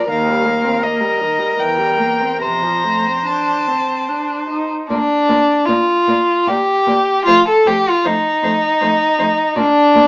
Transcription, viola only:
0.09 0.30 D#3 soft
0.29 0.47 G3 soft
0.46 0.66 A#3 soft
0.64 0.84 C4 soft
0.83 1.02 A#3 soft
1.01 1.22 G3 soft
1.20 1.40 D#3 soft
1.39 1.58 G3 soft
1.58 1.79 E3 soft
1.78 2.00 G3 soft
1.98 2.22 A#3 soft
2.20 2.40 C4 soft
2.40 2.64 C3 soft
2.62 2.85 F3 soft
2.84 3.07 A3 soft
3.06 3.25 C4 soft
3.25 3.68 D4 soft
3.67 4.10 C4 soft
4.08 4.49 D4 soft
4.49 4.89 D#4 soft
4.90 4.98 A#3 soft
5.28 5.36 A#3 soft
5.68 5.76 A#3 soft
6.08 6.16 A#3 soft
6.47 6.55 A#3 soft
6.87 6.95 A#3 soft
7.27 7.35 A3 soft
7.66 7.74 A3 soft
8.06 8.14 A3 soft
8.44 8.52 A3 soft
8.83 8.91 A3 soft
9.20 9.28 A3 soft
9.58 9.66 A#3 soft
9.96 10.04 A#3 soft

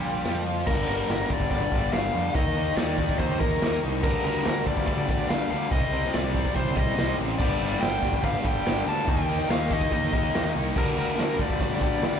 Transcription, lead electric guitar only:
0.00 0.42 G3 medium
0.67 0.86 A#4 medium
0.88 1.31 A#4 medium
1.30 1.50 D5 medium
1.51 1.93 D5 medium
1.93 2.35 F5 loud
2.35 2.76 D#5 loud
2.77 3.20 D5 loud
3.18 3.40 C5 medium
3.40 3.80 A#4 loud
4.03 4.24 A#4 loud
4.25 4.67 A#4 loud
4.67 4.85 D5 loud
4.87 5.31 D5 loud
5.29 5.49 F5 loud
5.51 5.71 F5 loud
5.72 6.15 D#5 loud
6.13 6.55 D5 medium
6.56 6.78 C5 loud
6.76 7.15 D#5 loud
7.38 7.82 D5 loud
7.81 8.24 G5 loud
8.25 8.44 F5 loud
8.47 8.89 G5 loud
8.88 9.09 A5 loud
9.09 9.50 G5 loud
9.51 9.72 F5 loud
9.72 10.52 D#5 loud
10.78 10.98 A#4 loud
10.99 11.41 A#4 medium
11.40 11.61 D5 loud
11.63 12.20 D5 loud

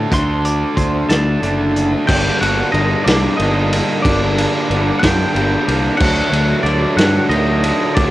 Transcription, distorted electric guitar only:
0.00 0.13 D4 medium
0.10 1.40 D3 medium
0.10 1.41 A3 medium
0.10 1.41 D4 medium
1.41 2.05 D3 medium
1.41 2.06 A3 loud
1.41 2.07 D4 medium
2.06 4.04 G2 medium
2.06 2.72 D3 medium
2.06 2.42 G3 medium
2.06 2.41 A#3 medium
2.06 2.40 D4 loud
2.40 2.74 G3 medium
2.40 2.74 A#3 medium
2.40 2.75 D4 medium
2.73 3.38 D3 medium
2.73 3.07 G3 medium
2.73 3.06 A#3 medium
2.73 3.06 D4 medium
3.06 3.39 G3 medium
3.06 3.40 A#3 medium
3.06 3.42 D4 medium
3.39 4.04 D3 medium
3.39 3.73 G3 medium
3.39 3.73 A#3 medium
3.39 3.72 D4 loud
3.73 4.06 G3 medium
3.73 4.06 A#3 medium
3.73 4.07 D4 medium
4.05 4.70 G2 medium
4.05 4.68 D3 medium
4.05 4.38 G3 loud
4.05 4.37 A#3 medium
4.05 4.37 D4 medium
4.37 4.69 G3 medium
4.37 4.70 A#3 medium
4.37 4.71 D4 medium
4.70 5.30 D3 medium
4.70 5.03 G3 medium
4.70 5.02 A#3 medium
4.70 5.00 D4 medium
5.01 5.32 G3 medium
5.01 5.33 A#3 medium
5.01 5.34 D4 medium
5.32 5.96 D3 medium
5.32 5.67 G3 medium
5.32 5.65 A#3 medium
5.32 5.65 D4 loud
5.65 5.99 G3 medium
5.65 5.98 A#3 medium
5.65 6.00 D4 medium
5.97 6.64 D3 medium
5.97 6.33 F#3 medium
5.97 6.33 A3 medium
5.97 6.30 D4 loud
6.31 6.65 F#3 medium
6.31 6.66 A3 medium
6.31 6.66 D4 medium
6.65 7.29 D3 medium
6.65 6.98 F#3 medium
6.65 6.98 A3 medium
6.65 6.97 D4 medium
6.97 7.30 F#3 medium
6.97 7.31 A3 medium
6.97 7.33 D4 medium
7.30 7.95 D3 medium
7.30 7.64 F#3 loud
7.30 7.63 A3 medium
7.30 7.62 D4 medium
7.63 7.96 F#3 medium
7.63 7.96 A3 medium
7.63 7.98 D4 medium
7.96 8.11 D3 medium
7.96 8.11 F#3 loud
7.96 8.11 A3 loud
7.96 8.11 D4 loud

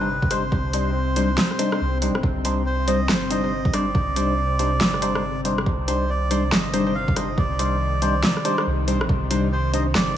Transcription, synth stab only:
0.01 0.09 G3 medium
0.01 0.09 D4 medium
0.01 0.09 D#4 medium
0.01 0.09 C5 medium
0.31 0.43 G3 medium
0.31 0.43 D4 medium
0.31 0.43 D#4 medium
0.31 0.43 C5 medium
0.74 0.91 G3 medium
0.74 0.91 D4 medium
0.74 0.91 D#4 medium
0.74 0.91 C5 medium
1.16 1.29 G3 loud
1.16 1.29 D4 medium
1.16 1.29 D#4 medium
1.16 1.29 C5 loud
1.59 1.70 G3 loud
1.59 1.70 D4 medium
1.59 1.70 D#4 medium
1.59 1.70 C5 loud
1.72 1.80 G3 medium
1.72 1.80 D4 medium
1.72 1.80 D#4 medium
1.72 1.80 C5 medium
2.02 2.15 G3 medium
2.02 2.15 D4 medium
2.02 2.15 D#4 medium
2.02 2.15 C5 medium
2.45 2.62 G3 medium
2.45 2.62 D4 medium
2.45 2.62 D#4 medium
2.45 2.62 C5 medium
2.88 3.00 G3 medium
2.88 3.00 D4 medium
2.88 3.00 D#4 medium
2.88 3.00 C5 loud
3.31 3.42 G3 loud
3.31 3.42 D4 medium
3.31 3.42 D#4 medium
3.31 3.42 C5 loud
3.44 3.52 G3 medium
3.44 3.52 D4 medium
3.44 3.52 D#4 medium
3.44 3.52 C5 medium
3.73 3.86 G3 medium
3.73 3.86 D4 medium
3.73 3.86 D#4 medium
3.73 3.86 C5 medium
4.16 4.34 G3 medium
4.16 4.34 D4 medium
4.16 4.34 D#4 medium
4.16 4.34 C5 medium
4.59 4.72 G3 loud
4.59 4.72 D4 medium
4.59 4.72 D#4 medium
4.59 4.72 C5 loud
5.02 5.13 G3 loud
5.02 5.13 D4 medium
5.02 5.13 D#4 medium
5.02 5.13 C5 loud
5.15 5.23 G3 medium
5.15 5.23 D4 medium
5.15 5.23 D#4 medium
5.15 5.23 C5 medium
5.45 5.57 G3 medium
5.45 5.58 D4 medium
5.45 5.58 D#4 medium
5.45 5.58 C5 medium
5.88 6.05 G3 medium
5.88 6.05 D4 medium
5.88 6.05 D#4 medium
5.88 6.05 C5 medium
6.31 6.43 G3 loud
6.31 6.43 D4 medium
6.31 6.43 D#4 medium
6.31 6.43 C5 loud
6.74 6.85 G3 medium
6.74 6.85 D4 loud
6.74 6.85 D#4 medium
6.74 6.85 C5 loud
6.87 6.95 G3 medium
6.87 6.95 D4 medium
6.87 6.95 D#4 medium
6.87 6.95 C5 medium
7.16 7.29 G3 medium
7.16 7.29 D4 medium
7.16 7.29 D#4 medium
7.16 7.29 C5 medium
7.59 7.77 G3 medium
7.59 7.77 D4 medium
7.59 7.77 D#4 medium
7.59 7.77 C5 medium
8.02 8.15 G3 loud
8.02 8.15 D4 medium
8.02 8.15 D#4 medium
8.02 8.15 C5 loud
8.45 8.56 G3 loud
8.45 8.56 D4 medium
8.45 8.56 D#4 loud
8.45 8.56 C5 loud
8.58 8.66 G3 medium
8.58 8.66 D4 medium
8.58 8.66 D#4 medium
8.58 8.66 C5 medium
8.88 9.00 G3 medium
8.88 9.00 D4 medium
8.88 9.00 D#4 medium
8.88 9.00 C5 medium
9.31 9.48 G3 medium
9.31 9.48 D4 medium
9.31 9.48 D#4 medium
9.31 9.48 C5 medium
9.73 9.86 G3 loud
9.73 9.86 D4 medium
9.73 9.86 D#4 medium
9.73 9.86 C5 loud

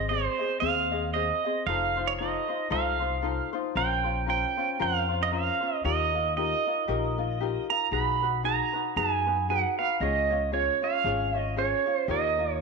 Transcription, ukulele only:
0.09 0.40 C4 medium
0.09 0.39 G#4 medium
0.09 0.40 C5 soft
0.09 0.38 D#5 medium
0.39 0.60 C4 soft
0.39 0.61 G#4 soft
0.39 0.62 D#5 soft
0.61 0.92 C4 medium
0.61 0.91 G#4 medium
0.61 0.91 C5 medium
0.61 0.90 D#5 medium
0.92 1.14 C4 soft
0.92 1.14 G#4 soft
0.92 1.14 D#5 soft
1.14 1.45 C4 medium
1.14 1.45 G#4 medium
1.14 1.44 C5 medium
1.14 1.43 D#5 medium
1.45 1.68 C4 soft
1.45 1.68 G#4 soft
1.45 1.67 D#5 medium
1.68 1.98 D#4 medium
1.68 1.97 F4 medium
1.68 1.97 A4 medium
1.68 1.96 C5 medium
1.97 2.19 D#4 soft
1.97 2.20 F4 soft
1.97 2.19 C5 soft
2.20 2.49 D#4 medium
2.20 2.48 F4 medium
2.20 2.49 A4 medium
2.20 2.47 C5 medium
2.48 2.70 D#4 soft
2.48 2.70 F4 soft
2.48 2.70 C5 soft
2.70 3.01 D#4 medium
2.70 3.00 F4 medium
2.70 3.00 A4 medium
2.70 2.99 C5 medium
3.00 3.22 D#4 soft
3.00 3.22 F4 soft
3.00 3.23 C5 soft
3.22 3.53 D#4 medium
3.22 3.53 F4 medium
3.22 3.52 A4 medium
3.22 3.52 C5 medium
3.53 3.76 D#4 soft
3.53 3.75 F4 medium
3.53 3.75 C5 medium
3.76 4.05 C#4 medium
3.76 4.04 F4 medium
3.76 4.05 A#4 medium
3.76 4.03 C5 medium
4.04 4.26 C#4 soft
4.04 4.27 F4 soft
4.04 4.27 C5 soft
4.26 4.57 C#4 medium
4.26 4.57 F4 medium
4.26 4.57 A#4 medium
4.26 4.56 C5 medium
4.57 4.78 C#4 soft
4.57 4.79 F4 soft
4.57 4.79 C5 soft
4.79 5.09 C#4 medium
4.79 5.09 F4 medium
4.79 5.09 A#4 medium
4.79 5.08 C5 medium
5.09 5.31 C#4 soft
5.09 5.32 F4 soft
5.09 5.32 C5 soft
5.31 5.62 C#4 medium
5.31 5.61 F4 medium
5.31 5.61 A#4 medium
5.31 5.59 C5 medium
5.61 5.84 C#4 soft
5.61 5.84 F4 soft
5.61 5.83 C5 soft
5.84 6.14 D#4 medium
5.84 6.14 F4 medium
5.84 6.13 G4 medium
5.84 6.13 A#4 medium
6.14 6.36 D#4 soft
6.14 6.37 F4 soft
6.14 6.36 A#4 soft
6.37 6.66 D#4 medium
6.37 6.66 F4 medium
6.37 6.66 G4 medium
6.37 6.65 A#4 medium
6.66 6.87 D#4 soft
6.66 6.87 F4 soft
6.66 6.87 A#4 soft
6.88 7.18 D#4 medium
6.88 7.17 F4 medium
6.88 7.17 G4 medium
6.88 7.16 A#4 medium
7.18 7.40 D#4 soft
7.18 7.40 F4 soft
7.18 7.40 A#4 soft
7.40 7.70 D#4 medium
7.40 7.70 F4 medium
7.40 7.70 G4 medium
7.40 7.69 A#4 medium
7.70 7.91 D#4 soft
7.70 7.92 F4 soft
7.70 7.91 A#4 soft
7.92 8.22 D#4 medium
7.92 8.22 F#4 medium
7.92 8.22 G#4 medium
7.92 8.21 B4 medium
8.22 8.43 D#4 soft
8.22 8.43 F#4 soft
8.22 8.44 B4 medium
8.43 8.74 D#4 medium
8.43 8.73 F#4 medium
8.43 8.73 G#4 medium
8.43 8.72 B4 medium
8.73 8.96 D#4 soft
8.73 8.96 F#4 soft
8.73 8.96 B4 soft
8.96 9.26 D#4 medium
8.96 9.26 F#4 medium
8.96 9.26 G#4 medium
8.96 9.25 B4 medium
9.26 9.48 D#4 soft
9.26 9.49 F#4 soft
9.26 9.49 B4 soft
9.49 9.78 D#4 medium
9.49 9.78 F#4 medium
9.49 9.78 G#4 medium
9.49 9.77 B4 medium
9.79 10.02 D#4 soft
9.79 10.01 F#4 soft
9.79 10.01 B4 medium
10.01 10.31 C#4 medium
10.01 10.30 F4 medium
10.01 10.30 G#4 medium
10.01 10.29 C#5 medium
10.30 10.52 C#4 soft
10.30 10.52 F4 soft
10.30 10.53 C#5 soft
10.52 10.82 C#4 medium
10.52 10.82 F4 medium
10.52 10.82 G#4 medium
10.52 10.81 C#5 medium
10.82 11.04 C#4 soft
10.82 11.04 F4 soft
10.82 11.04 C#5 soft
11.05 11.34 C#4 medium
11.05 11.34 F4 medium
11.05 11.34 G#4 medium
11.05 11.33 C#5 medium
11.34 11.56 C#4 soft
11.34 11.57 F4 soft
11.34 11.57 C#5 medium
11.56 11.86 C#4 medium
11.56 11.86 F4 medium
11.56 11.86 G#4 soft
11.56 11.85 C#5 medium
11.86 12.08 C#4 soft
11.86 12.08 F4 soft
11.86 12.08 C#5 soft
12.08 12.38 D#4 medium
12.08 12.39 F4 medium
12.08 12.38 G4 medium
12.08 12.37 A#4 medium
12.38 12.61 D#4 soft
12.38 12.61 F4 soft
12.38 12.60 A#4 medium

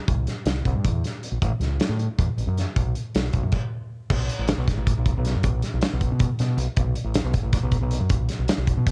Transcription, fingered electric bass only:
0.08 0.26 C2 medium
0.46 0.63 C2 medium
0.65 0.74 C2 medium
0.75 0.84 G2 medium
0.85 1.02 E2 medium
1.32 1.41 A#1 medium
1.42 1.51 A1 medium
1.60 1.78 C#2 medium
1.89 2.07 A2 medium
2.18 2.27 E2 medium
2.37 2.46 A1 medium
2.47 2.64 F#2 medium
2.76 2.93 B1 medium
3.15 3.32 B1 medium
3.34 3.42 B1 medium
3.43 3.52 F#2 medium
4.10 4.28 B1 medium
4.39 4.56 A1 medium
4.58 4.66 B1 medium
4.77 4.94 A1 medium
4.97 5.14 B1 medium
5.17 5.33 B1 medium
5.36 5.43 F#2 medium
5.44 5.61 B1 medium
5.74 5.82 B1 medium
5.93 6.10 B1 medium
6.12 6.28 B2 medium
6.40 6.57 B2 medium
6.57 6.66 B1 loud
6.77 6.94 B1 loud
7.04 7.22 A1 medium
7.24 7.33 B1 loud
7.43 7.61 A1 medium
7.63 7.80 B1 medium
7.81 7.99 B1 medium
8.00 8.09 F#2 medium
8.10 8.28 B1 medium
8.39 8.48 B1 medium
8.58 8.75 B1 medium
8.77 8.91 B2 medium

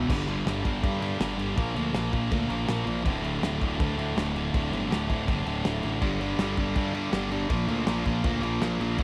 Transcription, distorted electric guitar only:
0.09 0.26 G2 medium
0.09 0.27 D3 loud
0.09 0.27 G3 medium
0.27 0.45 G2 medium
0.27 0.46 D3 medium
0.27 0.46 G3 medium
0.46 0.62 G2 medium
0.46 0.63 D3 medium
0.46 0.64 G3 medium
0.64 0.81 G2 medium
0.64 0.81 D3 loud
0.64 0.81 G3 loud
0.82 1.00 G2 medium
0.82 1.00 D3 loud
0.82 1.01 G3 loud
1.01 1.17 G2 medium
1.01 1.18 D3 medium
1.01 1.19 G3 loud
1.19 1.36 G2 medium
1.19 1.37 D3 medium
1.19 1.38 G3 loud
1.38 1.56 G2 medium
1.38 1.56 D3 medium
1.38 1.56 G3 loud
1.57 1.74 A#2 loud
1.57 1.75 F3 loud
1.57 1.74 A#3 loud
1.75 1.93 A#2 medium
1.75 1.94 F3 medium
1.75 1.94 A#3 loud
1.94 2.11 A#2 medium
1.94 2.12 F3 medium
1.94 2.12 A#3 medium
2.12 2.30 A#2 medium
2.12 2.32 F3 medium
2.12 2.32 A#3 loud
2.31 2.48 A#2 loud
2.31 2.49 F3 loud
2.31 2.49 A#3 loud
2.49 2.65 A#2 medium
2.49 2.67 F3 loud
2.49 2.66 A#3 loud
2.67 2.84 A#2 medium
2.67 2.86 F3 medium
2.67 2.85 A#3 loud
2.86 3.04 A#2 medium
2.86 3.05 F3 medium
2.86 3.04 A#3 medium
3.04 3.22 D2 medium
3.04 3.22 A2 loud
3.04 3.23 D3 loud
3.22 3.40 D2 loud
3.22 3.41 A2 loud
3.22 3.42 D3 loud
3.41 3.59 D2 medium
3.41 3.59 A2 medium
3.41 3.61 D3 loud
3.60 3.77 D2 medium
3.60 3.78 A2 medium
3.60 3.78 D3 loud
3.78 3.96 D2 loud
3.78 3.96 A2 loud
3.78 3.97 D3 loud
3.97 4.15 D2 medium
3.97 4.16 A2 medium
3.97 4.16 D3 medium
4.16 4.34 D2 medium
4.16 4.34 A2 loud
4.16 4.35 D3 loud
4.35 4.52 D2 loud
4.35 4.52 A2 medium
4.35 4.53 D3 loud
4.54 4.70 D2 medium
4.54 4.70 A2 loud
4.54 4.71 D3 loud
4.72 4.88 D2 loud
4.72 4.89 A2 medium
4.72 4.89 D3 medium
4.89 5.08 D2 medium
4.89 5.08 A2 medium
4.89 5.09 D3 medium
5.09 5.26 D2 medium
5.09 5.27 A2 loud
5.09 5.28 D3 loud
5.27 5.45 D2 medium
5.27 5.45 A2 loud
5.27 5.46 D3 loud
5.46 5.63 D2 medium
5.46 5.65 A2 medium
5.46 5.65 D3 medium
5.64 5.82 D2 medium
5.64 5.83 A2 medium
5.64 5.84 D3 loud
5.84 6.01 D2 medium
5.84 6.01 A2 medium
5.84 6.01 D3 loud
6.02 6.19 G2 medium
6.02 6.20 D3 loud
6.02 6.20 G3 loud
6.20 6.39 G2 medium
6.20 6.39 D3 loud
6.20 6.39 G3 loud
6.40 6.57 G2 medium
6.40 6.57 D3 medium
6.40 6.58 G3 medium
6.58 6.75 G2 medium
6.58 6.75 D3 medium
6.58 6.75 G3 medium
6.76 6.92 G2 loud
6.76 6.92 D3 loud
6.76 6.94 G3 loud
6.94 7.11 G2 medium
6.94 7.11 D3 loud
6.94 7.12 G3 loud
7.12 7.30 G2 medium
7.12 7.30 D3 medium
7.12 7.31 G3 loud
7.31 7.48 G2 medium
7.31 7.49 D3 loud
7.31 7.49 G3 loud
7.49 7.67 A#2 loud
7.49 7.68 F3 loud
7.49 7.68 A#3 loud
7.68 7.85 A#2 loud
7.68 7.86 F3 loud
7.68 7.85 A#3 loud
7.86 8.04 A#2 medium
7.86 8.06 F3 medium
7.86 8.05 A#3 loud
8.05 8.23 A#2 loud
8.05 8.24 F3 loud
8.05 8.24 A#3 medium
8.24 8.40 A#2 loud
8.24 8.41 F3 medium
8.24 8.42 A#3 loud
8.41 8.60 A#2 medium
8.41 8.61 F3 medium
8.41 8.61 A#3 loud
8.62 8.79 A#2 medium
8.62 8.80 F3 loud
8.62 8.80 A#3 loud
8.80 8.97 A#2 medium
8.80 8.98 F3 loud
8.80 8.98 A#3 medium
8.98 9.03 D2 loud
8.98 9.03 A2 loud
8.98 9.03 D3 loud

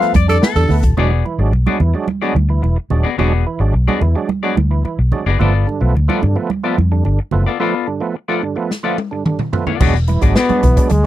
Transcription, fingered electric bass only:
0.14 0.39 F2 medium
0.56 0.68 E2 loud
0.69 0.82 D2 medium
0.83 0.96 D#1 loud
0.97 1.21 E1 loud
1.38 1.51 G#1 medium
1.52 1.64 B1 medium
1.80 1.92 E2 medium
2.35 2.59 D2 medium
2.63 2.75 E1 medium
2.91 3.03 D#1 medium
3.18 3.43 E1 medium
3.60 3.72 G#1 medium
3.74 3.86 B1 medium
4.01 4.14 E2 loud
4.57 4.81 D2 medium
4.85 muted fingered electric bass stroke soft
4.99 5.11 B1 medium
5.26 5.38 F#1 medium
5.40 5.64 G1 loud
5.81 5.93 B1 medium
5.95 6.07 D2 loud
6.23 6.35 G2 loud
6.78 7.02 F2 medium
7.05 7.18 G1 loud
7.33 7.45 F#1 medium
9.81 10.17 E1 loud
10.22 10.34 G#1 loud
10.50 muted fingered electric bass stroke medium
10.63 10.76 B1 loud
10.91 11.03 D2 loud

